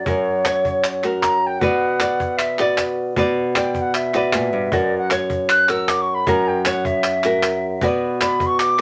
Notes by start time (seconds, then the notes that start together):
0.05 F#2 F#4 A#4 C#5, cajon bass
0.45 C#5, cajon slap, clap
0.65 cajon bass
0.84 clap
1.03 F#4 A#4, cajon slap, clap
1.21 A#5, cajon slap, clap
1.47 G5
1.59 B2 F#4 B4 D5 F#5, cajon bass
1.81 cajon slap
2.00 D5, cajon slap, clap
2.20 cajon bass
2.38 E5, cajon slap, clap
2.59 F#4 B4 D5, clap
2.63 D5
2.78 cajon slap, clap
3.16 B2 F#4 B4 D5, cajon bass
3.36 cajon slap
3.55 D5 G5, cajon slap, clap
3.75 cajon bass
3.82 F#5
3.94 E5, clap
4.14 F#4 B4 D5, clap
4.32 A#2, cajon slap, clap
4.53 G2
4.72 F#2 F#4 A#4 D5, cajon bass
4.91 cajon slap
4.98 F#5
5.10 C#5, cajon slap, clap
5.30 cajon bass
5.49 F#6, clap
5.69 F#4 A#4 E6, clap
5.88 D6, cajon slap, clap
6.02 C#6
6.14 B5
6.27 F#2 F#4 A#4 A#5, cajon bass
6.48 G5
6.65 C#5 F#5, cajon slap, clap
6.85 E5, cajon bass
7.04 cajon slap, clap
7.23 F#4 A#4, clap
7.43 cajon slap, clap
7.81 B2 F#4 B4 D5, cajon bass
8.21 D5 B5, cajon slap, clap
8.40 cajon bass
8.46 C#6
8.59 D6, clap